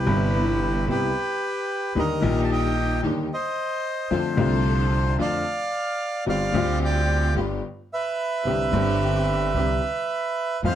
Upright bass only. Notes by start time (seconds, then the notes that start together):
0.07 G1
0.88 C2
1.95 D#2
2.23 A#1
3.04 D#2
4.11 F2
4.38 C2
5.19 F2
6.27 G1
6.53 D2
7.35 G1
8.45 C2
8.73 G1
9.55 C2
10.63 F2